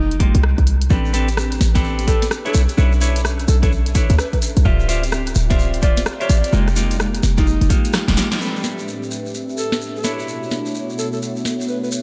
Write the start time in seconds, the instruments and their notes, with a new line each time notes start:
Already playing: 808-style bass F1, alto saxophone D#4
0.11 closed hi-hat
0.20 clean electric guitar G#3 A#3 D#4 F4 G4, kick, open hi-hat
0.35 808-style bass C2, closed hi-hat
0.43 cross-stick
0.58 808-style bass C2, kick, closed hi-hat
0.67 open hi-hat
0.82 closed hi-hat
0.90 808-style bass A1, clean electric guitar C4 D4 G4 A4 B4, analog synth pad C4 D4 G4 B4, kick, shekere
1.05 shekere
1.13 clean electric guitar C4 D4 G4 A4 B4, open hi-hat, shekere
1.28 closed hi-hat, shekere
1.37 cross-stick, shekere
1.52 closed hi-hat, shekere
1.61 808-style bass A1, snare, open hi-hat, shekere
1.75 clean electric guitar C4 D4 G4 A4 B4, kick, snare, closed hi-hat, shekere
1.84 shekere
1.99 closed hi-hat, shekere
2.07 clean electric guitar C4 D4 G4 A4 B4, alto saxophone A4, kick, open hi-hat, shekere
2.22 snare, closed hi-hat, shekere
2.31 cross-stick, shekere
2.45 clean electric guitar D4 E4 A4 B4 C#5, alto saxophone A4, closed hi-hat, shekere
2.54 808-style bass B1, analog synth pad C#4 A4 E5, open hi-hat, shekere
2.69 closed hi-hat, shekere
2.77 808-style bass B1, clean electric guitar D4 E4 A4 B4 C#5, shekere
2.92 shekere
3.01 clean electric guitar D4 E4 A4 B4 C#5, open hi-hat, shekere
3.16 closed hi-hat, shekere
3.25 cross-stick, shekere
3.39 closed hi-hat, shekere
3.48 808-style bass B1, alto saxophone A4, open hi-hat, shekere
3.62 clean electric guitar D4 E4 A4 B4 C#5, alto saxophone A4, kick, closed hi-hat, shekere
3.72 shekere
3.86 closed hi-hat, shekere
3.95 clean electric guitar D4 E4 A4 B4 C#5, kick, open hi-hat, shekere
4.09 808-style bass D2, closed hi-hat, shekere
4.19 alto saxophone B4, cross-stick, shekere
4.33 alto saxophone B4, kick, closed hi-hat, shekere
4.42 open hi-hat, shekere
4.57 808-style bass B1, closed hi-hat, shekere
4.65 808-style bass D1, analog synth pad C4 F4 G4, clean electric guitar F4 G4 C5 D5 E5, kick, shekere
4.79 shekere
4.88 clean electric guitar F4 G4 C5 D5 E5, open hi-hat, shekere
5.04 closed hi-hat, shekere
5.12 cross-stick, shekere
5.27 closed hi-hat, shekere
5.35 808-style bass D1, open hi-hat, shekere
5.50 clean electric guitar F4 G4 C5 D5 E5, kick, snare, closed hi-hat, shekere
5.59 shekere
5.74 closed hi-hat, shekere
5.82 clean electric guitar F4 G4 C5 D5 E5, alto saxophone D5, kick, open hi-hat, shekere
5.97 snare, closed hi-hat, shekere
6.06 cross-stick, shekere
6.20 clean electric guitar F4 G4 C5 D5 E5, alto saxophone D5, closed hi-hat, shekere
6.30 808-style bass A1, open hi-hat, shekere
6.44 closed hi-hat, shekere
6.53 808-style bass F1, clean electric guitar G#3 A#3 D#4 F4 G4, analog synth pad G#3 A#3 D#4, shekere
6.68 cross-stick, closed hi-hat, shekere
6.76 clean electric guitar G#3 A#3 D#4 F4 G4, open hi-hat, shekere
6.91 closed hi-hat, shekere
7.00 cross-stick, shekere
7.15 closed hi-hat, shekere
7.23 808-style bass F1, snare, open hi-hat, shekere
7.37 clean electric guitar G#3 A#3 D#4 F4 G4, alto saxophone D#4, kick, snare, closed hi-hat, shekere
7.46 shekere
7.61 808-style bass F1, closed hi-hat, shekere
7.70 clean electric guitar G#3 A#3 D#4 F4 G4, kick, open hi-hat, shekere
7.85 closed hi-hat, shekere
7.93 cross-stick, snare, shekere
8.08 808-style bass D#1, clean electric guitar G#3 A#3 D#4 F4 G4, kick, snare, closed hi-hat, shekere
8.17 clean electric guitar G#3 A#3 D#4 F4 G4, snare, open hi-hat, shekere
8.31 clean electric guitar G#3 A#3 D#4 F4 G4, snare, closed hi-hat, shekere
8.40 analog synth pad A2 C4 D4 G4 B4 E5, ambient pad A3, clean electric guitar C4 D4 G4 A4 B4, shekere
8.56 ambient pad D4, shekere
8.64 snare, shekere
8.79 shekere
8.88 shekere
9.03 shekere
9.11 shekere
9.15 ambient pad G4 B4
9.26 shekere
9.34 shekere
9.49 shekere
9.57 alto saxophone A4, shekere
9.72 snare, shekere
9.81 shekere
9.96 alto saxophone A4, shekere
10.04 analog synth pad B2 A3 F#4 C#5, ambient pad B3, clean electric guitar D4 E4 A4 B4 C#5, snare, shekere
10.19 shekere
10.28 shekere
10.39 ambient pad E5
10.43 shekere
10.51 snare, shekere
10.66 shekere
10.75 shekere
10.90 shekere
10.98 alto saxophone A4, ambient pad A4 C#5, shekere
11.13 alto saxophone A4, shekere
11.22 shekere
11.36 shekere
11.45 snare, shekere
11.61 shekere
11.68 alto saxophone B4, shekere
11.83 alto saxophone B4, shekere
11.92 shekere